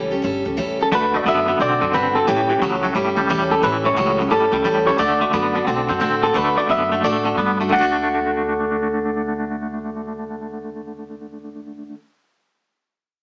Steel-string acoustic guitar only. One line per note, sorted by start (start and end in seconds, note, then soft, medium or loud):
0.00 0.12 A2 medium
0.00 0.12 E3 medium
0.00 0.12 G3 medium
0.00 0.11 C#4 medium
0.00 0.10 G4 medium
0.11 0.21 G3 medium
0.11 0.22 C#4 medium
0.11 0.23 G4 medium
0.11 0.23 A4 medium
0.22 0.45 G3 medium
0.22 0.45 C#4 medium
0.22 0.44 G4 medium
0.22 0.44 A4 medium
0.45 0.56 G3 soft
0.45 0.57 C#4 medium
0.45 0.57 G4 medium
0.45 0.57 A4 medium
0.57 0.79 A2 medium
0.57 0.79 E3 medium
0.57 0.80 G3 medium
0.57 0.79 C#4 medium
0.57 0.79 G4 medium
0.57 0.78 A4 loud
0.79 0.92 G3 soft
0.79 0.93 C#4 soft
0.79 0.93 G4 medium
0.79 0.92 A4 medium
0.92 1.14 D3 medium
0.92 1.14 A3 medium
0.92 1.14 D4 loud
0.92 1.13 F#4 medium
0.92 1.12 A4 medium
1.13 1.26 D4 soft
1.13 1.27 F#4 medium
1.13 1.26 A4 medium
1.27 1.48 D3 medium
1.27 1.48 A3 medium
1.27 1.49 D4 medium
1.27 1.48 F#4 medium
1.27 1.47 A4 medium
1.48 1.59 D4 soft
1.48 1.60 F#4 medium
1.48 1.60 A4 medium
1.60 1.82 A3 medium
1.60 1.82 D4 medium
1.60 1.81 F#4 medium
1.60 1.79 A4 medium
1.81 1.93 D4 soft
1.81 1.93 F#4 soft
1.81 1.94 A4 medium
1.93 2.15 D3 medium
1.93 2.16 A3 medium
1.93 2.16 D4 medium
1.93 2.15 F#4 medium
1.93 2.14 A4 medium
2.15 2.28 D4 soft
2.15 2.28 F#4 medium
2.15 2.27 A4 medium
2.27 2.49 A2 medium
2.27 2.50 E3 medium
2.27 2.50 G3 loud
2.27 2.50 C#4 loud
2.27 2.49 G4 medium
2.27 2.48 A4 loud
2.49 2.61 G3 soft
2.49 2.62 C#4 soft
2.49 2.62 G4 medium
2.49 2.62 A4 medium
2.62 2.84 A2 medium
2.62 2.84 E3 medium
2.62 2.84 G3 medium
2.62 2.84 C#4 medium
2.62 2.83 G4 medium
2.62 2.82 A4 medium
2.83 2.93 G3 medium
2.83 2.94 C#4 medium
2.83 2.95 G4 medium
2.83 2.96 A4 medium
2.94 3.17 G3 medium
2.94 3.17 C#4 medium
2.94 3.15 G4 medium
2.94 3.15 A4 medium
3.16 3.29 G3 medium
3.16 3.29 C#4 medium
3.16 3.29 G4 medium
3.16 3.29 A4 medium
3.29 3.51 A2 medium
3.29 3.51 E3 medium
3.29 3.52 G3 medium
3.29 3.50 C#4 medium
3.29 3.50 G4 medium
3.29 3.49 A4 loud
3.50 3.62 G3 soft
3.50 3.63 C#4 medium
3.50 3.63 G4 medium
3.50 3.63 A4 medium
3.62 3.85 A2 medium
3.62 3.85 E3 medium
3.62 3.85 G3 medium
3.62 3.84 C#4 medium
3.62 3.84 G4 medium
3.62 3.83 A4 loud
3.84 3.96 G3 soft
3.84 3.96 C#4 medium
3.84 3.97 G4 medium
3.84 3.97 A4 medium
3.96 4.19 A2 medium
3.96 4.19 E3 medium
3.96 4.19 G3 medium
3.96 4.19 C#4 medium
3.96 4.19 G4 medium
3.96 4.18 A4 medium
4.19 4.29 G3 soft
4.19 4.30 C#4 medium
4.19 4.31 G4 medium
4.19 4.32 A4 medium
4.30 4.53 G3 medium
4.30 4.52 C#4 medium
4.30 4.51 G4 medium
4.30 4.50 A4 medium
4.52 4.63 G3 soft
4.52 4.64 C#4 medium
4.52 4.64 G4 medium
4.52 4.65 A4 medium
4.64 4.87 A2 medium
4.64 4.87 E3 medium
4.64 4.87 G3 medium
4.64 4.87 C#4 medium
4.64 4.87 G4 medium
4.64 4.86 A4 medium
4.87 4.98 G3 medium
4.87 4.98 C#4 soft
4.87 4.99 G4 medium
4.87 4.98 A4 medium
4.98 5.21 D3 medium
4.98 5.21 A3 medium
4.98 5.21 D4 medium
4.98 5.20 F#4 medium
4.98 5.19 A4 loud
5.20 5.33 D4 soft
5.20 5.33 F#4 medium
5.20 5.33 A4 medium
5.33 5.55 D3 medium
5.33 5.55 A3 medium
5.33 5.55 D4 medium
5.33 5.54 F#4 medium
5.33 5.53 A4 medium
5.54 5.67 D4 soft
5.54 5.67 F#4 medium
5.54 5.67 A4 medium
5.67 5.89 A3 medium
5.67 5.90 D4 medium
5.67 5.89 F#4 medium
5.67 5.87 A4 medium
5.88 6.00 D4 medium
5.88 6.00 F#4 medium
5.88 6.00 A4 medium
6.00 6.22 D3 medium
6.00 6.23 A3 medium
6.00 6.23 D4 medium
6.00 6.23 F#4 medium
6.00 6.22 A4 loud
6.24 6.34 D4 soft
6.24 6.34 F#4 medium
6.24 6.35 A4 medium
6.34 6.57 D3 medium
6.34 6.57 A3 medium
6.34 6.57 D4 medium
6.34 6.57 F#4 medium
6.34 6.55 A4 medium
6.57 6.69 D4 soft
6.57 6.70 F#4 medium
6.57 6.69 A4 medium
6.69 6.91 A3 medium
6.69 6.92 D4 medium
6.69 6.92 F#4 medium
6.69 6.91 A4 medium
6.92 7.03 D4 soft
6.92 7.04 F#4 medium
6.92 7.04 A4 medium
7.04 7.26 D3 medium
7.04 7.26 A3 medium
7.04 7.26 D4 medium
7.04 7.24 F#4 medium
7.04 7.23 A4 loud
7.25 7.38 D4 soft
7.25 7.38 F#4 soft
7.25 7.37 A4 medium
7.38 7.60 A3 medium
7.38 7.60 D4 medium
7.38 7.60 F#4 medium
7.38 7.59 A4 medium
7.60 7.73 D4 medium
7.60 7.73 F#4 medium
7.60 7.72 A4 medium
7.69 11.93 D3 medium
7.69 11.95 A3 medium
7.76 11.97 D4 medium
7.76 11.98 F#4 medium
7.81 11.99 A4 loud